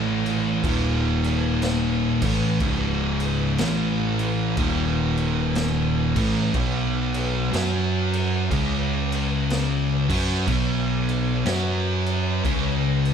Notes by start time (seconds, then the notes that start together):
Already playing: A1 A2 E3 A3
0.26 crash
0.64 D#1 D#2 A#2 D#3, kick, crash
1.24 crash
1.62 snare, crash
2.22 A1 A2 E3 A3, kick, crash
2.60 C#1 C#2 G#2 C#3, kick, crash
3.20 crash
3.58 A1 A2 E3 A3, snare, crash
4.19 crash
4.57 D#1 D#2 A#2 D#3, kick, crash
5.17 crash
5.55 snare, crash
6.16 A1 A2 E3 A3, kick, crash
6.54 B1 B2 F#3 B3, kick, crash
7.14 crash
7.51 F#2 F#3 C#4 F#4, snare, crash
8.13 crash
8.51 C#2 C#3 G#3 C#4, kick, crash
9.12 crash
9.50 snare, crash
10.09 F#2 F#3 C#4 F#4, kick, crash
10.47 B1 B2 F#3 B3, kick, crash
11.09 crash
11.45 F#2 F#3 C#4 F#4, snare, crash
12.06 crash
12.44 C#2 C#3 G#3 C#4, kick, crash
13.05 crash